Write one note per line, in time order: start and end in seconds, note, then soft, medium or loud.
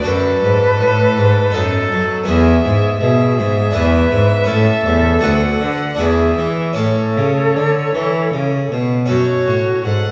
0.02 0.41 F#2 medium
0.02 1.49 D4 medium
0.02 1.49 F#4 medium
0.02 1.50 A4 medium
0.02 2.24 A4 medium
0.06 0.40 F#2 medium
0.06 1.56 B4 medium
0.43 0.82 G#2 medium
0.43 0.77 G#2 medium
0.80 1.19 A2 medium
0.80 1.14 A2 medium
1.18 1.51 G#2 medium
1.18 1.54 G#2 medium
1.50 2.22 B3 medium
1.50 2.25 D#4 medium
1.50 2.26 A4 medium
1.55 1.91 F#2 medium
1.55 1.88 F#2 medium
1.55 2.28 A4 medium
1.92 2.28 F#3 medium
1.92 2.25 F#3 medium
2.24 3.69 B3 medium
2.24 3.70 E4 medium
2.24 3.70 G#4 medium
2.28 2.61 E2 medium
2.28 2.64 E2 medium
2.28 3.00 G#4 medium
2.28 3.00 E5 medium
2.65 2.98 G#2 medium
2.65 3.01 G#2 medium
3.01 3.34 B2 medium
3.01 3.40 B2 medium
3.01 3.77 G#4 medium
3.01 5.24 E5 medium
3.38 3.71 G#2 medium
3.38 3.75 G#2 medium
3.71 4.44 D4 medium
3.71 4.44 E4 medium
3.71 4.46 G#4 medium
3.75 4.08 E2 medium
3.75 4.11 E2 medium
3.75 4.49 B4 medium
4.11 4.45 G#2 medium
4.11 4.48 G#2 medium
4.44 5.19 C#4 medium
4.44 5.20 E4 medium
4.44 5.20 A4 medium
4.44 5.74 A4 medium
4.49 4.82 A2 medium
4.49 4.85 A2 medium
4.86 5.22 E2 medium
4.86 5.20 E2 medium
5.19 5.94 D4 medium
5.19 5.96 F#4 medium
5.19 5.97 B4 medium
5.19 6.01 F#5 medium
5.23 5.60 D2 medium
5.23 5.58 D2 medium
5.61 5.99 D3 medium
5.61 5.96 D3 medium
5.95 6.73 D4 medium
5.95 6.73 E4 soft
5.95 6.75 G#4 medium
5.99 6.38 E2 medium
5.99 6.35 E2 medium
5.99 6.50 G#4 medium
5.99 6.79 E5 medium
6.38 6.74 E3 medium
6.38 6.77 E3 medium
6.73 9.04 C#4 soft
6.73 9.05 E4 soft
6.73 9.06 A4 soft
6.77 7.13 A2 medium
6.77 7.18 A2 medium
6.77 8.74 A4 medium
6.77 8.90 C#5 medium
7.17 7.57 C#3 medium
7.17 7.52 C#3 soft
7.56 7.94 D3 medium
7.56 7.91 D3 medium
7.95 8.33 E3 medium
7.95 8.30 E3 soft
8.33 8.68 C#3 soft
8.33 8.71 C#3 medium
8.71 9.09 B2 medium
8.71 9.07 B2 soft
9.06 9.81 C#4 soft
9.06 10.12 F#4 soft
9.06 10.12 A4 soft
9.10 9.44 F#2 soft
9.10 9.45 F#2 medium
9.10 9.87 F#4 medium
9.10 9.82 C#5 medium
9.47 9.83 A2 soft
9.47 9.82 A2 soft
9.85 10.12 G#2 soft
9.85 10.12 G#2 medium
9.85 10.12 A4 medium
9.85 10.12 F#5 medium